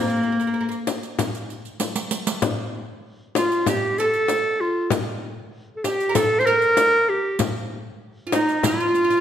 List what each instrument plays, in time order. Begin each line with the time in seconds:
Already playing: clarinet A#3
0.01 oud A#3
0.08 oud A#3, riq
0.17 oud A#3
0.23 oud A#3
0.32 oud A#3
0.40 oud A#3, riq
0.47 oud A#3
0.54 oud A#3
0.61 oud A#3
0.69 oud A#3, riq
0.87 riq, frame drum
1.03 riq
1.19 riq, frame drum
1.35 riq
1.50 riq
1.65 riq
1.80 riq, frame drum
1.96 riq
2.11 riq
2.27 riq
2.42 riq, frame drum
3.35 oud F4, clarinet F4, riq, frame drum
3.52 riq
3.66 oud G4, clarinet G4, riq, frame drum
3.98 clarinet A4, oud A4, riq
4.14 riq
4.28 riq, frame drum
4.61 clarinet F4
4.90 riq, frame drum
5.76 clarinet A4
5.84 clarinet G4, oud G4, riq, frame drum
6.00 riq
6.09 oud A#4
6.15 clarinet A4, oud A4, riq, frame drum
6.39 clarinet C5, oud C5
6.46 clarinet A#4, oud A#4, riq
6.62 riq
6.77 riq, frame drum
7.09 clarinet G4
7.39 riq, frame drum
8.27 oud F4
8.32 oud D#4, clarinet D#4, riq, frame drum
8.49 riq
8.63 oud F4, clarinet F4, riq, frame drum
8.71 oud F4
8.80 oud F4
8.88 oud F4
8.95 oud F4, riq
9.04 oud F4
9.10 oud F4, riq
9.17 oud F4